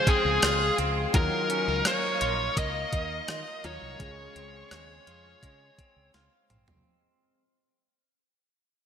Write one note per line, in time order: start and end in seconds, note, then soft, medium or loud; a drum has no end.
0.00 1.17 C#3 medium
0.00 1.14 F3 medium
0.00 1.09 G#3 medium
0.00 1.21 G#3 medium
0.00 0.42 F4 medium
0.00 1.10 F4 medium
0.00 1.10 G#4 medium
0.00 1.11 G#4 medium
0.00 1.10 F5 medium
0.00 1.11 G#5 medium
0.00 1.11 C6 medium
0.07 0.77 C4 medium
0.07 0.75 G#4 medium
0.07 kick medium
0.07 closed hi-hat medium
0.25 0.38 C#2 medium
0.42 0.69 C#2 medium
0.42 1.71 F4 medium
0.42 cross-stick loud
0.42 closed hi-hat medium
0.78 1.05 C#2 medium
0.78 1.21 C4 medium
0.78 closed hi-hat medium
1.13 1.27 D#2 medium
1.13 2.17 D#3 medium
1.13 4.00 F#3 medium
1.13 3.60 F#3 medium
1.13 3.60 D#4 medium
1.13 3.60 F4 medium
1.13 3.97 A#4 medium
1.13 1.88 A#4 medium
1.13 3.61 A#4 medium
1.13 3.97 D#5 medium
1.13 6.81 F5 medium
1.13 3.97 D#6 medium
1.13 kick loud
1.13 closed hi-hat medium
1.50 1.68 C#4 medium
1.50 closed hi-hat medium
1.68 1.81 C#2 medium
1.68 2.92 D#4 soft
1.85 2.56 A#3 medium
1.85 2.58 C#5 medium
1.85 cross-stick medium
1.85 closed hi-hat medium
2.21 2.48 A#1 medium
2.21 3.29 F4 medium
2.21 closed hi-hat medium
2.57 2.84 C#2 medium
2.57 4.00 A#3 medium
2.57 3.65 D#5 medium
2.57 kick medium
2.57 closed hi-hat medium
2.93 3.19 D#2 medium
2.93 3.63 D#4 medium
2.93 kick medium
2.93 closed hi-hat medium
3.28 3.42 D#3 medium
3.28 5.07 F4 medium
3.28 cross-stick loud
3.28 closed hi-hat medium
3.64 3.78 D#2 medium
3.64 4.00 F#3 soft
3.64 4.00 D#4 soft
3.64 4.07 D#4 medium
3.64 3.98 F4 soft
3.64 4.00 A#4 soft
3.64 6.11 C#5 medium
3.64 closed hi-hat medium
3.82 3.96 C2 medium
3.98 4.27 C#2 loud
3.98 5.03 C#3 medium
3.98 6.81 G#3 medium
3.98 4.71 G#3 medium
3.98 6.81 F4 medium
3.98 6.82 G#4 medium
3.98 6.82 C6 medium
3.98 6.83 C#6 medium
3.98 kick medium
3.98 closed hi-hat medium
4.36 4.63 C#2 medium
4.36 5.78 C4 medium
4.36 closed hi-hat medium
4.71 4.98 D#2 medium
4.71 5.42 G#3 medium
4.71 cross-stick medium
4.71 closed hi-hat medium
5.07 5.34 F2 medium
5.07 6.14 F4 medium
5.07 closed hi-hat medium
5.43 5.69 C#3 medium
5.43 7.43 G#3 medium
5.43 kick medium
5.43 closed hi-hat medium
5.79 6.49 C4 medium
5.79 kick medium
5.79 closed hi-hat medium
5.96 6.10 C#2 medium
6.14 6.28 C#2 medium
6.14 7.43 F4 medium
6.14 snare soft
6.14 closed hi-hat medium
6.50 6.63 A#1 medium
6.50 7.43 C4 medium
6.50 closed hi-hat medium
6.50 mid tom medium
6.68 6.81 C2 medium
6.68 floor tom medium